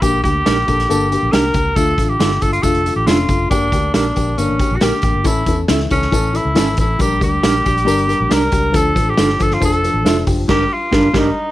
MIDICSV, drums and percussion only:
0, 0, Header, 1, 2, 480
1, 0, Start_track
1, 0, Tempo, 436047
1, 25, Time_signature, 4, 2, 24, 8
1, 12676, End_track
2, 0, Start_track
2, 0, Title_t, "Drums"
2, 23, Note_on_c, 9, 42, 83
2, 24, Note_on_c, 9, 36, 97
2, 35, Note_on_c, 9, 54, 94
2, 133, Note_off_c, 9, 42, 0
2, 134, Note_off_c, 9, 36, 0
2, 145, Note_off_c, 9, 54, 0
2, 261, Note_on_c, 9, 36, 76
2, 275, Note_on_c, 9, 54, 49
2, 276, Note_on_c, 9, 42, 65
2, 371, Note_off_c, 9, 36, 0
2, 385, Note_off_c, 9, 54, 0
2, 386, Note_off_c, 9, 42, 0
2, 508, Note_on_c, 9, 38, 105
2, 509, Note_on_c, 9, 42, 93
2, 511, Note_on_c, 9, 54, 81
2, 618, Note_off_c, 9, 38, 0
2, 619, Note_off_c, 9, 42, 0
2, 621, Note_off_c, 9, 54, 0
2, 747, Note_on_c, 9, 42, 74
2, 750, Note_on_c, 9, 36, 79
2, 750, Note_on_c, 9, 54, 57
2, 857, Note_off_c, 9, 42, 0
2, 860, Note_off_c, 9, 36, 0
2, 860, Note_off_c, 9, 54, 0
2, 875, Note_on_c, 9, 38, 28
2, 878, Note_on_c, 9, 42, 56
2, 985, Note_off_c, 9, 38, 0
2, 988, Note_off_c, 9, 42, 0
2, 994, Note_on_c, 9, 42, 75
2, 1000, Note_on_c, 9, 54, 105
2, 1104, Note_off_c, 9, 42, 0
2, 1110, Note_off_c, 9, 54, 0
2, 1231, Note_on_c, 9, 54, 48
2, 1233, Note_on_c, 9, 42, 70
2, 1341, Note_off_c, 9, 54, 0
2, 1343, Note_off_c, 9, 42, 0
2, 1464, Note_on_c, 9, 42, 83
2, 1466, Note_on_c, 9, 54, 79
2, 1469, Note_on_c, 9, 38, 96
2, 1574, Note_off_c, 9, 42, 0
2, 1577, Note_off_c, 9, 54, 0
2, 1580, Note_off_c, 9, 38, 0
2, 1695, Note_on_c, 9, 42, 85
2, 1700, Note_on_c, 9, 36, 99
2, 1709, Note_on_c, 9, 54, 43
2, 1805, Note_off_c, 9, 42, 0
2, 1810, Note_off_c, 9, 36, 0
2, 1819, Note_off_c, 9, 54, 0
2, 1941, Note_on_c, 9, 36, 102
2, 1941, Note_on_c, 9, 42, 87
2, 1951, Note_on_c, 9, 54, 92
2, 2051, Note_off_c, 9, 36, 0
2, 2051, Note_off_c, 9, 42, 0
2, 2061, Note_off_c, 9, 54, 0
2, 2179, Note_on_c, 9, 36, 81
2, 2188, Note_on_c, 9, 54, 51
2, 2192, Note_on_c, 9, 42, 62
2, 2289, Note_off_c, 9, 36, 0
2, 2298, Note_off_c, 9, 54, 0
2, 2302, Note_off_c, 9, 42, 0
2, 2423, Note_on_c, 9, 54, 83
2, 2427, Note_on_c, 9, 38, 105
2, 2429, Note_on_c, 9, 42, 91
2, 2533, Note_off_c, 9, 54, 0
2, 2537, Note_off_c, 9, 38, 0
2, 2539, Note_off_c, 9, 42, 0
2, 2541, Note_on_c, 9, 38, 35
2, 2651, Note_off_c, 9, 38, 0
2, 2660, Note_on_c, 9, 42, 76
2, 2663, Note_on_c, 9, 54, 58
2, 2666, Note_on_c, 9, 36, 75
2, 2770, Note_off_c, 9, 42, 0
2, 2773, Note_off_c, 9, 54, 0
2, 2776, Note_off_c, 9, 36, 0
2, 2786, Note_on_c, 9, 42, 56
2, 2896, Note_off_c, 9, 42, 0
2, 2898, Note_on_c, 9, 36, 85
2, 2899, Note_on_c, 9, 54, 107
2, 2904, Note_on_c, 9, 42, 77
2, 3008, Note_off_c, 9, 36, 0
2, 3009, Note_off_c, 9, 54, 0
2, 3014, Note_off_c, 9, 42, 0
2, 3019, Note_on_c, 9, 42, 52
2, 3129, Note_off_c, 9, 42, 0
2, 3149, Note_on_c, 9, 42, 71
2, 3150, Note_on_c, 9, 54, 49
2, 3259, Note_off_c, 9, 42, 0
2, 3260, Note_off_c, 9, 54, 0
2, 3382, Note_on_c, 9, 42, 85
2, 3386, Note_on_c, 9, 54, 78
2, 3388, Note_on_c, 9, 38, 91
2, 3492, Note_off_c, 9, 42, 0
2, 3496, Note_off_c, 9, 54, 0
2, 3498, Note_off_c, 9, 38, 0
2, 3617, Note_on_c, 9, 42, 88
2, 3621, Note_on_c, 9, 36, 97
2, 3630, Note_on_c, 9, 54, 43
2, 3727, Note_off_c, 9, 42, 0
2, 3731, Note_off_c, 9, 36, 0
2, 3741, Note_off_c, 9, 54, 0
2, 3863, Note_on_c, 9, 36, 107
2, 3866, Note_on_c, 9, 42, 83
2, 3872, Note_on_c, 9, 54, 91
2, 3973, Note_off_c, 9, 36, 0
2, 3976, Note_off_c, 9, 42, 0
2, 3982, Note_off_c, 9, 54, 0
2, 4097, Note_on_c, 9, 36, 82
2, 4104, Note_on_c, 9, 42, 66
2, 4111, Note_on_c, 9, 54, 50
2, 4207, Note_off_c, 9, 36, 0
2, 4214, Note_off_c, 9, 42, 0
2, 4221, Note_off_c, 9, 54, 0
2, 4337, Note_on_c, 9, 38, 102
2, 4339, Note_on_c, 9, 42, 95
2, 4351, Note_on_c, 9, 54, 87
2, 4447, Note_off_c, 9, 38, 0
2, 4449, Note_off_c, 9, 42, 0
2, 4461, Note_off_c, 9, 54, 0
2, 4578, Note_on_c, 9, 42, 70
2, 4588, Note_on_c, 9, 36, 77
2, 4592, Note_on_c, 9, 54, 58
2, 4689, Note_off_c, 9, 42, 0
2, 4698, Note_off_c, 9, 36, 0
2, 4702, Note_off_c, 9, 54, 0
2, 4822, Note_on_c, 9, 42, 75
2, 4829, Note_on_c, 9, 54, 104
2, 4932, Note_off_c, 9, 42, 0
2, 4939, Note_off_c, 9, 54, 0
2, 5058, Note_on_c, 9, 36, 97
2, 5060, Note_on_c, 9, 42, 75
2, 5079, Note_on_c, 9, 54, 52
2, 5168, Note_off_c, 9, 36, 0
2, 5170, Note_off_c, 9, 42, 0
2, 5189, Note_off_c, 9, 54, 0
2, 5291, Note_on_c, 9, 42, 91
2, 5297, Note_on_c, 9, 38, 100
2, 5310, Note_on_c, 9, 54, 82
2, 5402, Note_off_c, 9, 42, 0
2, 5407, Note_off_c, 9, 38, 0
2, 5421, Note_off_c, 9, 54, 0
2, 5524, Note_on_c, 9, 42, 85
2, 5538, Note_on_c, 9, 36, 101
2, 5553, Note_on_c, 9, 54, 45
2, 5634, Note_off_c, 9, 42, 0
2, 5648, Note_off_c, 9, 36, 0
2, 5663, Note_off_c, 9, 54, 0
2, 5772, Note_on_c, 9, 42, 90
2, 5779, Note_on_c, 9, 36, 103
2, 5797, Note_on_c, 9, 54, 97
2, 5882, Note_off_c, 9, 42, 0
2, 5889, Note_off_c, 9, 36, 0
2, 5907, Note_off_c, 9, 54, 0
2, 6015, Note_on_c, 9, 36, 77
2, 6015, Note_on_c, 9, 42, 66
2, 6037, Note_on_c, 9, 54, 50
2, 6125, Note_off_c, 9, 36, 0
2, 6125, Note_off_c, 9, 42, 0
2, 6147, Note_off_c, 9, 54, 0
2, 6256, Note_on_c, 9, 38, 101
2, 6258, Note_on_c, 9, 42, 92
2, 6265, Note_on_c, 9, 54, 87
2, 6366, Note_off_c, 9, 38, 0
2, 6368, Note_off_c, 9, 42, 0
2, 6375, Note_off_c, 9, 54, 0
2, 6385, Note_on_c, 9, 38, 34
2, 6495, Note_off_c, 9, 38, 0
2, 6499, Note_on_c, 9, 42, 71
2, 6508, Note_on_c, 9, 36, 80
2, 6513, Note_on_c, 9, 54, 54
2, 6609, Note_off_c, 9, 42, 0
2, 6618, Note_off_c, 9, 36, 0
2, 6623, Note_off_c, 9, 54, 0
2, 6626, Note_on_c, 9, 38, 29
2, 6736, Note_off_c, 9, 38, 0
2, 6741, Note_on_c, 9, 36, 89
2, 6749, Note_on_c, 9, 42, 78
2, 6758, Note_on_c, 9, 54, 107
2, 6851, Note_off_c, 9, 36, 0
2, 6859, Note_off_c, 9, 42, 0
2, 6868, Note_off_c, 9, 54, 0
2, 6986, Note_on_c, 9, 42, 76
2, 6987, Note_on_c, 9, 54, 49
2, 7096, Note_off_c, 9, 42, 0
2, 7097, Note_off_c, 9, 54, 0
2, 7215, Note_on_c, 9, 42, 86
2, 7221, Note_on_c, 9, 38, 95
2, 7239, Note_on_c, 9, 54, 84
2, 7325, Note_off_c, 9, 42, 0
2, 7331, Note_off_c, 9, 38, 0
2, 7349, Note_off_c, 9, 54, 0
2, 7451, Note_on_c, 9, 42, 85
2, 7461, Note_on_c, 9, 36, 94
2, 7467, Note_on_c, 9, 54, 44
2, 7561, Note_off_c, 9, 42, 0
2, 7571, Note_off_c, 9, 36, 0
2, 7577, Note_off_c, 9, 54, 0
2, 7699, Note_on_c, 9, 42, 82
2, 7704, Note_on_c, 9, 36, 103
2, 7720, Note_on_c, 9, 54, 89
2, 7809, Note_off_c, 9, 42, 0
2, 7814, Note_off_c, 9, 36, 0
2, 7830, Note_off_c, 9, 54, 0
2, 7940, Note_on_c, 9, 36, 82
2, 7947, Note_on_c, 9, 42, 66
2, 7953, Note_on_c, 9, 54, 50
2, 8050, Note_off_c, 9, 36, 0
2, 8057, Note_off_c, 9, 42, 0
2, 8063, Note_off_c, 9, 54, 0
2, 8183, Note_on_c, 9, 38, 104
2, 8185, Note_on_c, 9, 42, 93
2, 8185, Note_on_c, 9, 54, 88
2, 8293, Note_off_c, 9, 38, 0
2, 8295, Note_off_c, 9, 42, 0
2, 8296, Note_off_c, 9, 54, 0
2, 8428, Note_on_c, 9, 54, 59
2, 8431, Note_on_c, 9, 42, 71
2, 8434, Note_on_c, 9, 36, 80
2, 8538, Note_off_c, 9, 54, 0
2, 8541, Note_off_c, 9, 42, 0
2, 8544, Note_off_c, 9, 36, 0
2, 8558, Note_on_c, 9, 42, 59
2, 8668, Note_off_c, 9, 42, 0
2, 8670, Note_on_c, 9, 42, 85
2, 8672, Note_on_c, 9, 54, 113
2, 8781, Note_off_c, 9, 42, 0
2, 8782, Note_off_c, 9, 54, 0
2, 8786, Note_on_c, 9, 42, 53
2, 8896, Note_off_c, 9, 42, 0
2, 8907, Note_on_c, 9, 54, 50
2, 8918, Note_on_c, 9, 42, 72
2, 9017, Note_off_c, 9, 54, 0
2, 9028, Note_off_c, 9, 42, 0
2, 9145, Note_on_c, 9, 42, 90
2, 9151, Note_on_c, 9, 38, 101
2, 9155, Note_on_c, 9, 54, 83
2, 9255, Note_off_c, 9, 42, 0
2, 9261, Note_off_c, 9, 38, 0
2, 9265, Note_off_c, 9, 54, 0
2, 9376, Note_on_c, 9, 42, 92
2, 9384, Note_on_c, 9, 36, 98
2, 9398, Note_on_c, 9, 54, 45
2, 9487, Note_off_c, 9, 42, 0
2, 9494, Note_off_c, 9, 36, 0
2, 9508, Note_off_c, 9, 54, 0
2, 9619, Note_on_c, 9, 42, 90
2, 9625, Note_on_c, 9, 36, 107
2, 9643, Note_on_c, 9, 54, 93
2, 9729, Note_off_c, 9, 42, 0
2, 9735, Note_off_c, 9, 36, 0
2, 9753, Note_off_c, 9, 54, 0
2, 9862, Note_on_c, 9, 36, 84
2, 9870, Note_on_c, 9, 42, 68
2, 9872, Note_on_c, 9, 54, 53
2, 9972, Note_off_c, 9, 36, 0
2, 9980, Note_off_c, 9, 42, 0
2, 9982, Note_off_c, 9, 54, 0
2, 10100, Note_on_c, 9, 38, 106
2, 10101, Note_on_c, 9, 42, 90
2, 10109, Note_on_c, 9, 54, 92
2, 10210, Note_off_c, 9, 38, 0
2, 10211, Note_off_c, 9, 42, 0
2, 10219, Note_off_c, 9, 54, 0
2, 10229, Note_on_c, 9, 38, 33
2, 10339, Note_off_c, 9, 38, 0
2, 10345, Note_on_c, 9, 42, 77
2, 10352, Note_on_c, 9, 54, 59
2, 10353, Note_on_c, 9, 36, 85
2, 10455, Note_off_c, 9, 42, 0
2, 10462, Note_off_c, 9, 54, 0
2, 10463, Note_off_c, 9, 36, 0
2, 10468, Note_on_c, 9, 38, 29
2, 10578, Note_off_c, 9, 38, 0
2, 10585, Note_on_c, 9, 36, 89
2, 10591, Note_on_c, 9, 42, 84
2, 10592, Note_on_c, 9, 54, 105
2, 10695, Note_off_c, 9, 36, 0
2, 10701, Note_off_c, 9, 42, 0
2, 10701, Note_on_c, 9, 42, 55
2, 10702, Note_off_c, 9, 54, 0
2, 10811, Note_off_c, 9, 42, 0
2, 10833, Note_on_c, 9, 54, 49
2, 10837, Note_on_c, 9, 42, 77
2, 10943, Note_off_c, 9, 54, 0
2, 10947, Note_off_c, 9, 42, 0
2, 11072, Note_on_c, 9, 42, 87
2, 11076, Note_on_c, 9, 54, 85
2, 11078, Note_on_c, 9, 38, 96
2, 11182, Note_off_c, 9, 42, 0
2, 11186, Note_off_c, 9, 54, 0
2, 11188, Note_off_c, 9, 38, 0
2, 11303, Note_on_c, 9, 46, 64
2, 11307, Note_on_c, 9, 36, 100
2, 11311, Note_on_c, 9, 54, 48
2, 11413, Note_off_c, 9, 46, 0
2, 11417, Note_off_c, 9, 36, 0
2, 11421, Note_off_c, 9, 54, 0
2, 11545, Note_on_c, 9, 49, 77
2, 11548, Note_on_c, 9, 36, 107
2, 11548, Note_on_c, 9, 38, 103
2, 11655, Note_off_c, 9, 49, 0
2, 11658, Note_off_c, 9, 36, 0
2, 11658, Note_off_c, 9, 38, 0
2, 12028, Note_on_c, 9, 36, 110
2, 12031, Note_on_c, 9, 38, 96
2, 12138, Note_off_c, 9, 36, 0
2, 12141, Note_off_c, 9, 38, 0
2, 12266, Note_on_c, 9, 36, 99
2, 12268, Note_on_c, 9, 38, 100
2, 12376, Note_off_c, 9, 36, 0
2, 12378, Note_off_c, 9, 38, 0
2, 12676, End_track
0, 0, End_of_file